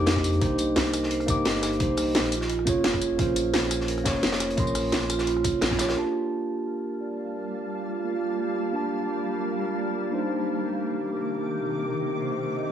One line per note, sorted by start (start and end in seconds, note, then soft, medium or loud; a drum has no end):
0.00 0.23 F2 loud
0.00 0.40 A#3 loud
0.00 2.34 D4 medium
0.00 0.42 D#4 medium
0.00 0.41 G4 medium
0.00 0.43 G4 medium
0.00 0.76 A#4 medium
0.00 0.44 C5 medium
0.00 0.41 D6 loud
0.06 0.23 D#5 medium
0.06 snare loud
0.06 closed hi-hat medium
0.06 tambourine soft
0.16 kick medium
0.16 cross-stick soft
0.16 snare soft
0.24 0.40 F2 loud
0.24 closed hi-hat medium
0.24 tambourine medium
0.33 closed hi-hat soft
0.40 0.75 C2 loud
0.40 1.25 A#3 medium
0.40 1.26 D#4 medium
0.40 0.57 G4 medium
0.40 1.27 G4 medium
0.40 1.27 C5 medium
0.40 kick loud
0.40 closed hi-hat medium
0.58 closed hi-hat medium
0.58 tambourine medium
0.76 1.27 C2 medium
0.76 0.92 A#4 medium
0.76 snare loud
0.76 closed hi-hat medium
0.86 snare soft
0.93 1.09 A#4 medium
0.93 cross-stick soft
0.93 closed hi-hat loud
0.93 closed hi-hat medium
0.93 tambourine medium
1.03 snare soft
1.11 1.27 C5 medium
1.11 closed hi-hat medium
1.20 cross-stick soft
1.20 closed hi-hat soft
1.26 1.79 G1 medium
1.26 1.77 A#3 loud
1.26 1.78 D#4 medium
1.26 1.79 G4 loud
1.26 1.79 D6 loud
1.26 kick loud
1.26 closed hi-hat medium
1.26 tambourine medium
1.45 1.62 D#5 medium
1.45 snare loud
1.45 closed hi-hat medium
1.55 snare soft
1.62 cross-stick soft
1.62 snare medium
1.62 closed hi-hat medium
1.62 tambourine medium
1.73 closed hi-hat soft
1.78 2.16 C2 medium
1.78 2.30 A#3 medium
1.78 2.31 D#4 medium
1.78 2.32 G4 medium
1.78 1.96 C5 medium
1.78 kick loud
1.78 closed hi-hat medium
1.82 2.32 C5 medium
1.97 cross-stick medium
1.97 closed hi-hat loud
1.97 open hi-hat medium
1.97 tambourine medium
2.15 2.66 A#1 medium
2.15 snare loud
2.15 closed hi-hat medium
2.24 snare soft
2.32 2.48 F4 medium
2.32 closed hi-hat loud
2.32 closed hi-hat medium
2.32 tambourine medium
2.41 snare medium
2.49 2.65 F4 medium
2.49 closed hi-hat medium
2.59 cross-stick soft
2.65 3.18 F1 medium
2.65 3.16 A#3 loud
2.65 3.17 C#4 medium
2.65 3.17 F4 loud
2.65 3.18 G#4 medium
2.65 3.18 C#5 loud
2.65 kick loud
2.65 closed hi-hat medium
2.65 tambourine medium
2.84 3.01 G#4 medium
2.84 snare loud
2.84 closed hi-hat medium
2.93 kick medium
2.93 cross-stick soft
3.02 closed hi-hat medium
3.02 tambourine medium
3.17 3.52 A#1 loud
3.17 4.02 A#3 medium
3.17 4.03 C#4 medium
3.17 4.04 F4 medium
3.17 3.35 F4 medium
3.17 4.04 G#4 medium
3.17 4.05 C5 medium
3.17 kick loud
3.17 closed hi-hat medium
3.36 closed hi-hat medium
3.36 closed hi-hat loud
3.36 tambourine medium
3.54 4.04 A#1 medium
3.54 3.69 G#4 medium
3.54 snare loud
3.54 closed hi-hat medium
3.54 closed hi-hat loud
3.63 snare soft
3.71 3.87 G#4 medium
3.71 cross-stick medium
3.71 closed hi-hat loud
3.71 closed hi-hat medium
3.71 tambourine medium
3.80 snare soft
3.88 4.04 A#4 medium
3.88 closed hi-hat medium
3.88 closed hi-hat loud
3.98 cross-stick soft
3.98 closed hi-hat soft
4.04 4.56 F1 medium
4.04 4.55 A#3 loud
4.04 4.55 C#4 medium
4.04 4.56 F4 medium
4.04 4.56 G#4 medium
4.04 4.57 C#5 loud
4.04 kick loud
4.04 snare loud
4.04 closed hi-hat loud
4.04 closed hi-hat medium
4.04 tambourine medium
4.15 snare soft
4.23 4.40 C#5 medium
4.23 snare loud
4.23 closed hi-hat medium
4.32 snare loud
4.32 closed hi-hat medium
4.40 cross-stick soft
4.40 snare soft
4.40 closed hi-hat loud
4.40 tambourine medium
4.50 closed hi-hat medium
4.56 4.91 A#1 loud
4.56 5.42 A#3 medium
4.56 5.42 C#4 medium
4.56 5.43 F4 medium
4.56 5.43 G#4 medium
4.56 4.73 A#4 medium
4.56 5.44 C6 medium
4.56 kick loud
4.56 closed hi-hat medium
4.67 tambourine soft
4.75 cross-stick medium
4.75 closed hi-hat loud
4.75 open hi-hat medium
4.75 tambourine medium
4.92 5.43 A#1 medium
4.92 snare loud
4.92 closed hi-hat medium
4.92 closed hi-hat loud
5.01 snare soft
5.10 5.25 F4 medium
5.10 cross-stick medium
5.10 closed hi-hat medium
5.10 closed hi-hat loud
5.10 tambourine medium
5.19 snare medium
5.19 tambourine soft
5.27 5.43 F4 medium
5.27 closed hi-hat medium
5.36 cross-stick soft
5.44 kick loud
5.44 closed hi-hat loud
5.44 closed hi-hat medium
5.44 tambourine medium
5.61 5.95 A#1 loud
5.61 5.78 G#4 medium
5.61 snare loud
5.61 closed hi-hat medium
5.61 tambourine soft
5.71 kick medium
5.71 cross-stick medium
5.71 snare soft
5.78 5.93 A#3 medium
5.78 5.94 C#4 medium
5.78 5.94 F4 medium
5.78 5.95 G#4 medium
5.78 5.95 C#5 medium
5.78 snare loud
5.78 closed hi-hat medium
5.78 closed hi-hat loud
5.78 tambourine medium
5.89 snare loud
5.89 closed hi-hat medium
5.95 10.09 G3 medium
5.95 8.71 A#3 medium
5.95 12.72 A#3 medium
5.95 8.72 D4 medium
5.95 6.12 F4 medium
5.95 8.72 F4 medium
5.95 8.73 G4 medium
5.95 10.09 F5 medium
5.95 10.09 A5 medium
5.95 8.73 A5 medium
6.31 6.47 G4 medium
6.48 6.64 G4 medium
6.66 6.82 A#4 medium
7.00 7.17 D5 medium
7.35 7.51 A#4 medium
7.87 8.03 F4 medium
8.05 8.20 F4 medium
8.39 8.56 G4 medium
8.72 10.10 A#3 medium
8.72 10.10 D4 medium
8.72 10.11 F4 medium
8.72 8.90 F4 medium
8.72 10.11 G4 medium
8.76 10.12 A5 medium
9.09 9.24 G4 medium
9.26 9.42 G4 medium
9.43 9.59 A#4 medium
9.78 9.95 D5 medium
10.11 12.72 C3 medium
10.11 12.72 D#3 medium
10.11 12.72 A#3 medium
10.11 12.72 D4 medium
10.11 12.72 D#4 medium
10.11 12.72 G4 medium
10.11 10.28 C5 medium
10.11 12.72 C5 medium
10.11 12.72 D6 medium
10.65 10.80 G4 medium
10.82 10.98 G4 medium
11.17 11.33 A#4 medium
11.51 11.67 G4 medium
11.86 12.02 A#4 medium
12.03 12.19 A#4 medium
12.21 12.36 C5 medium
12.55 12.72 D#5 medium